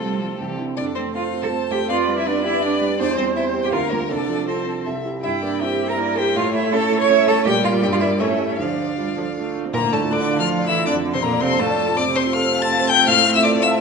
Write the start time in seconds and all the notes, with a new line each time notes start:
Already playing: C2 A3 C4 F4 A4
0.01 G3
0.20 F3 A3
0.39 C2 E3 G4
0.57 D3 C4 E4
0.77 F2 D4 A4 D5
0.95 A3 C4 C5
1.13 C4 F4 A4 C5 F5
1.34 F4
1.42 A4 A5
1.53 C4
1.71 A3 G4 G5
1.89 F2 F4 B4 D5 F5
2.08 G3
2.17 E4 E5
2.25 B3 D4 B4 D5
2.44 E4 G4 E5
2.62 B3 D4 B4 D5
2.81 G3
2.98 E2 D4 C5 D5
3.17 G3 C4 C5
3.36 C4 E4 C5 E5
3.54 G4
3.63 G4 G5
3.72 D2 F4 A#4 F5
3.91 A#3 F4 A#4
4.09 C2 D4 A4 D5
4.29 F3
4.47 C4 F4 A4 C5
4.67 A4
4.86 C2 E5
5.05 E4 G4
5.22 G2 E4 E5 G5
5.43 A#3 D4 D5
5.60 C4 E4 G4 E5 G5
5.80 G4
5.89 A#4 A#5
5.98 A#3 E4 D5
6.17 A#3 G4 C5 G5
6.35 A2 A3 F4 C#5 F5
6.54 A3 E4 E5
6.72 C#4 A4 C#5 A5
6.92 E4
7.00 C#5 C#6
7.10 C#4 E5
7.27 A3 A4 C#5 A5
7.45 A#2 G3 G4 D5 G5
7.64 F4 A#4 F5
7.82 G2 G4 G5
7.92 F4 F5
8.00 E4 G4 A#4 E5
8.19 A2 A3 C#4 C#5 E5
8.40 G4 A4
8.48 C#4 C#5
8.58 D2 F3 D4 D5 F5
8.78 D4
8.98 G3 F4
9.17 F3 A4
9.37 A3 F4
9.56 D4
9.65 C4
9.74 D2 A#2 A#3 A#4 A#5
9.84 A2
9.92 A2 A3 D4 A4 A5
10.01 F4
10.11 D3 D4 A4 D5 D6
10.21 D5
10.30 F5
10.39 F3 F4 F5 A5 F6
10.49 F5
10.59 D5
10.67 E3 E4 A4 E5 E6
10.77 F4
10.86 F2 D3 D4 D5 D6
10.96 F3
11.05 D4
11.13 C3 C4 F4 C5 C6
11.22 A#2 A#3 A4 A#4 A#5
11.33 D5
11.40 C3 C4 C5 F5 C6
11.51 A5
11.59 A2 A3 A4 F5 A5
11.70 D5
11.79 A4
11.89 F4
11.97 F2 A3 C4 D5 D6
12.08 C3
12.15 C4 C5 C6
12.26 F4
12.33 A4 F5 F6
12.43 C5
12.53 F5
12.62 A5 A6
12.72 F5
12.80 C5
12.89 A4 G5 G6
12.98 F4
13.07 A2 F5 F6
13.17 A3
13.26 C4
13.35 F4 E5 E6
13.44 A4 D5 D6
13.54 C5
13.62 E5 F5 E6
13.71 A5